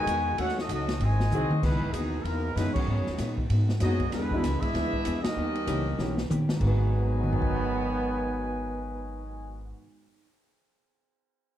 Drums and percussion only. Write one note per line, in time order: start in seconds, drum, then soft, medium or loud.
0.07 hi-hat pedal medium
0.07 ride medium
0.38 ride medium
0.49 snare soft
0.59 snare medium
0.69 hi-hat pedal medium
0.69 ride medium
0.88 snare medium
0.88 ride medium
1.01 ride medium
1.20 snare medium
1.31 hi-hat pedal medium
1.31 mid tom medium
1.51 mid tom medium
1.63 kick medium
1.63 snare soft
1.63 crash medium
1.82 kick medium
1.94 hi-hat pedal medium
1.94 ride medium
2.25 ride medium
2.57 snare soft
2.57 hi-hat pedal medium
2.57 ride medium
2.76 kick loud
2.76 crash medium
3.06 snare soft
3.18 snare soft
3.18 hi-hat pedal medium
3.18 ride medium
3.38 kick medium
3.50 ride medium
3.69 snare medium
3.80 snare soft
3.80 hi-hat pedal medium
3.80 ride medium
4.00 kick medium
4.00 ride medium
4.12 snare soft
4.12 ride medium
4.31 kick medium
4.43 snare soft
4.43 hi-hat pedal medium
4.43 ride medium
4.62 kick medium
4.62 ride medium
4.75 snare soft
4.75 ride medium
4.93 kick medium
5.05 hi-hat pedal medium
5.05 ride medium
5.24 snare medium
5.24 ride medium
5.55 ride medium
5.67 hi-hat pedal medium
5.67 ride medium
5.99 snare medium
6.18 snare medium
6.30 hi-hat pedal medium
6.30 mid tom medium
6.49 snare medium
6.60 kick medium
6.60 crash medium
7.23 mid tom medium
7.33 floor tom medium
7.42 kick medium